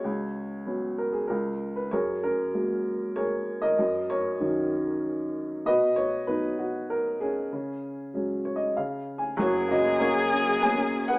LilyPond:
<<
  \new Staff \with { instrumentName = "Cello" } { \time 3/4 \key fis \major \tempo 4 = 96 r2. | r2. | r2. | r2. |
r2. | gis'2. | }
  \new Staff \with { instrumentName = "Upright piano" } { \time 3/4 \key fis \major << { cis''4 r8 ais'16 gis'16 ais'8. b'16 | cis''8 ais'4. cis''8. dis''16~ | dis''8 cis''4. r4 | dis''8 cis''8 b'8 fis'8 ais'8 gis'8~ |
gis'4 \tuplet 3/2 { r8. cis''16 dis''8 eis''4 gis''8 } | cis''8 dis''8 cis''4 gis''8. fis''16 | } \\ { <fis' gis'>4 r4 eis'4 | <gis' ais'>8 cis'4. <gis' ais'>8. ais'16~ | ais'8 ais'4. r4 | <fis' b'>4. r4 cis'8~ |
cis'4 r2 | fis'8 fis'8 fis'4 cis''8. b'16 | } >> }
  \new Staff \with { instrumentName = "Upright piano" } { \clef bass \time 3/4 \key fis \major cis,4 <fis b cis'>4 cis,4 | fis,4 <fis gis ais>2 | fis,4 <dis fis cis'>2 | b,4 <fis b dis'>2 |
cis4 <fis gis cis'>4 cis4 | <fis,, fis,>8 cis8 ais8 cis'8 ais4 | }
  \new Staff \with { instrumentName = "String section" } { \time 3/4 \key fis \major r2. | r2. | r2. | r2. |
r2. | <fis, fis gis' ais'>2. | }
  \new Staff \with { instrumentName = "Felt piano" } { \time 3/4 \key fis \major r2. | r2. | r2. | r2. |
r2. | fis8 ais8 <ais cis' gis'>8 gis'8 b16 cis'8. | }
>>